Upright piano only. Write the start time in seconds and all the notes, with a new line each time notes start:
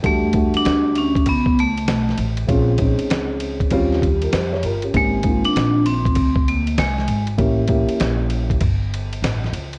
0.03 G3 A3 D4 F#4
0.34 G3 A3 D4 F#4
2.47 G#3 C4 C#4 F4
2.79 G#3 C4 C#4 D#4
3.72 G3 C4 C#4 F4
4.23 F4 A#4
4.33 G4 C5
4.53 G4 C#5
4.64 F4 A#4
4.84 C#4 G4
4.94 A#3 C4 D#4 G4
5.24 D#3 A#3 C4 F4
7.38 A#3 C#4 E4 G4
7.68 A#3 C#4 E4 G4